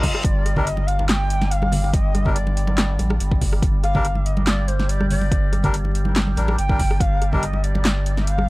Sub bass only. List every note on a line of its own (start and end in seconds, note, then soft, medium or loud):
0.24 1.92 G1 loud
1.93 2.98 G1 loud
2.99 3.19 A1 medium
3.20 3.61 G1 medium
3.62 5.30 G1 loud
5.32 6.36 G1 loud
6.37 6.57 A1 medium
6.58 6.99 G1 medium
7.00 8.49 G1 loud